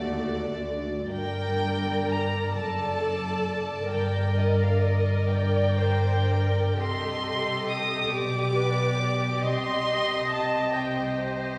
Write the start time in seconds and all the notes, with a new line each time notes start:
Already playing: D2 D#2 A3 F#4 A4 D5
0.53 D2
1.08 G1 G2 A#4 D5 G5
2.10 A#5
2.53 F#1 F#2 A4 A5
3.89 G1 G2 A#4 G5
4.36 D#5
4.59 F5
4.80 D#5
5.27 D5 G5
5.79 C5
6.31 A#4
6.80 C2 C3 G4 A4 D#5 C6
7.68 D#6
8.11 B1 B2 G4 D5 D6
8.55 B4
8.98 D5
9.42 C2 C3 D#5 C6
10.28 A5
10.71 C5 G5